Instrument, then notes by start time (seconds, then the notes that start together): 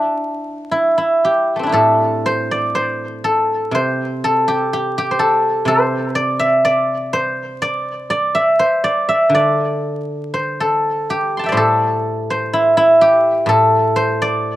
guzheng
Already playing: D4 E4 A4
0.71 E4
0.98 E4
1.25 G4
1.56 A3 C4
1.63 D4 E4
1.69 A2 G4
1.73 A4
2.26 C5
2.51 D5
2.75 C5
3.24 A4
3.71 C3 C5
4.24 A4
4.48 G4
4.73 G4
4.98 G4
5.11 C5
5.19 A4
5.65 C3 C5
6.15 D5
6.39 E5
6.65 D5
7.13 C5
7.62 D5
8.10 D5
8.35 E5
8.59 C5
8.84 D5
9.09 E5
9.29 D3
9.35 D5
10.34 C5
10.60 A4
11.10 G4
11.37 A5 C6
11.44 E5 G5
11.49 A2 C5 D5
11.57 A4
12.30 C5
12.53 E4
12.77 E4
13.01 G4
13.46 A2 A4
13.96 C5
14.22 D5